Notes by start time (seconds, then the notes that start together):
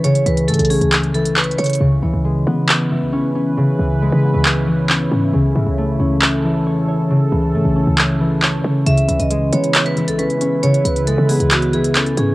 Already playing: C#2 A3 B3 C#4 C#5
0.04 C#3 C#5, closed hi-hat
0.15 closed hi-hat
0.26 C#2 E3 B4, closed hi-hat
0.37 closed hi-hat
0.48 G#2 A3 A4, closed hi-hat
0.54 closed hi-hat
0.59 B1, closed hi-hat
0.65 closed hi-hat
0.70 C#4 G#4, open hi-hat
0.81 C#2, closed hi-hat
0.92 clap, closed hi-hat
1.03 closed hi-hat
1.14 E3 A4, closed hi-hat
1.25 closed hi-hat
1.36 B4 C#5, clap, closed hi-hat
1.44 closed hi-hat
1.51 closed hi-hat
1.58 C#3 C#5, closed hi-hat
1.64 closed hi-hat
1.66 closed hi-hat
1.70 closed hi-hat
1.73 closed hi-hat
1.75 closed hi-hat
1.80 C#2 C#3 C#4 E4 B4
2.02 C#2 E3
2.14 C#2
2.24 G#3
2.46 C#3 B3
2.69 clap
2.91 E3
3.02 B1
3.12 C#4
3.35 C#4
3.57 C#3
3.79 C#2 E3
4.02 G#3
4.12 C#3
4.23 B3
4.34 C#2
4.45 clap
4.68 E3
4.89 C#4, clap
5.12 G#2 C#4
5.33 C#2 C#3 A4
5.55 G#2 E3
5.67 C#2
5.78 A3
6.00 C#2 C#4
6.22 clap
6.44 E3
6.66 E2 C#5
6.88 C#5
6.99 C#2
7.10 C#3
7.32 C#2 E3
7.54 G#2 A3
7.65 B1
7.76 C#4
7.87 C#2
7.98 clap
8.20 E3
8.42 C#5, clap
8.64 C#3 C#5
8.86 C#2 C#3 E4 B4 E5, closed hi-hat
8.98 closed hi-hat
9.08 C#2 E3, closed hi-hat
9.20 C#2 D#5, closed hi-hat
9.30 G#3, closed hi-hat
9.52 C#3 B3 C#5, closed hi-hat
9.64 closed hi-hat
9.75 clap, closed hi-hat
9.86 B4, closed hi-hat
9.97 E3, closed hi-hat
10.08 B1 A4, closed hi-hat
10.18 C#4 B4, closed hi-hat
10.30 closed hi-hat
10.41 C#4, closed hi-hat
10.63 C#3 C#5, closed hi-hat
10.74 closed hi-hat
10.85 C#2 E3 B4, closed hi-hat
10.96 closed hi-hat
11.07 G#3 A4, closed hi-hat
11.18 C#3
11.29 B3 G#4, open hi-hat
11.40 C#2, closed hi-hat
11.51 F#4, clap, closed hi-hat
11.62 closed hi-hat
11.73 E3 G#4, closed hi-hat
11.84 closed hi-hat
11.95 C#4 A4, clap, closed hi-hat
12.06 closed hi-hat
12.17 G#2 C#4 G#4, closed hi-hat